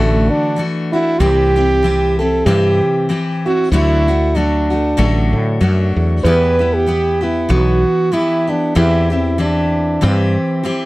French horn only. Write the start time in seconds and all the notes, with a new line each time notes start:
Already playing: A3
0.29 D4
0.92 E4
1.20 G4
2.19 A4
2.45 G4
3.46 F#4
3.73 E4
4.36 D4
6.24 B4
6.74 G4
7.23 E4
7.51 F#4
8.14 E4
8.50 D4
8.77 E4
9.13 E4
9.41 D4
10.04 C4